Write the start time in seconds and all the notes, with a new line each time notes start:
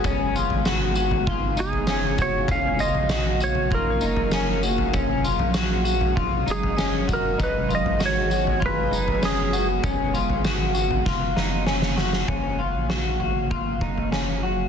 Already playing: G#3
0.04 F#1 C#3 G#3 B3 C#4 F5, kick, floor tom, tambourine
0.35 F4, tambourine
0.50 G#1, floor tom
0.65 F#4, snare, tambourine
0.95 F#4, tambourine
1.11 floor tom
1.27 D#4 F4, kick, floor tom
1.57 F#1 D#4 G#4, tambourine
1.73 floor tom
1.87 C#4, snare, tambourine
2.18 F#4 C#5, kick, tambourine
2.48 F#1 F#3 A#3 C#4 F5, kick, floor tom, tambourine
2.79 F4 D#5, tambourine
2.95 A#1, floor tom
3.09 F#4, snare, tambourine
3.40 F#4 C#5, tambourine
3.55 floor tom
3.71 C#4 D#4 F4 A#4, kick, floor tom
3.91 F4
4.01 F#1 D#4, tambourine
4.13 G#4, floor tom
4.31 C#4, snare, tambourine
4.63 F#4, tambourine
4.78 floor tom
4.93 F#1 D#3 G#3 C#4, kick, floor tom, tambourine
5.24 F4, tambourine
5.39 A#1, floor tom
5.54 F#4 G#4, snare, tambourine
5.84 F#4, tambourine
6.01 floor tom
6.16 F4, kick, floor tom
6.46 F#1 D#4, tambourine
6.51 G#4
6.63 floor tom
6.77 C#4 D#5, snare, tambourine
7.08 F#4, kick, tambourine
7.13 A#4
7.38 F#1 B3 D#4 G#4, kick, floor tom, tambourine
7.43 B4
7.69 F4, tambourine
7.75 D#5
7.84 G#1, floor tom
7.99 F#4 D#5, snare, tambourine
8.06 C#5
8.18 F#4
8.30 F#4, tambourine
8.39 G#5
8.47 floor tom
8.60 F4, kick, floor tom
8.66 B4
8.91 F#1 D#4, tambourine
9.08 floor tom
9.22 C#4 G#4, snare, tambourine
9.53 F#4, tambourine
9.83 F#1 C#3 C#4 F5, kick, floor tom, tambourine
10.14 F4, tambourine
10.29 G#1, floor tom
10.44 F#4, snare, tambourine
10.75 F#4, tambourine
10.91 floor tom
11.06 F#1 F#3 A#3 F4 F5, kick, snare
11.36 F#1 D#4, snare
11.66 C#4, snare
11.82 snare
11.97 F#4, snare
12.13 snare
12.28 F#1 C#3 F#3 A#3 C#4 F5, kick, floor tom
12.59 F4
12.75 A#1
12.90 F#4, snare
13.20 G#1 F#4, floor tom
13.51 F4, kick, floor tom
13.81 F#1 D#4, kick
13.98 floor tom
14.12 C#4, snare
14.43 F#4